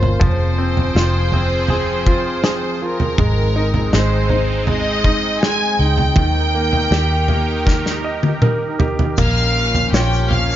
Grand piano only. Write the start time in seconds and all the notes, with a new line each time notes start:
Already playing: A#3 F4
0.19 F3
0.58 C4
0.95 F4
1.33 C4
1.70 G#4
2.07 F4
2.44 G#4
2.82 F4
3.19 G#3
3.56 D#4
3.93 G#3
4.30 D#4
4.67 G#3
5.04 D#4
5.43 G#3
5.80 D#4
6.18 D#3
6.55 A#3
6.92 G4
7.29 A#3
7.65 A#4
8.04 D#5
8.42 A#4
8.79 G4
9.18 A#3
9.94 F4 A#4 C#5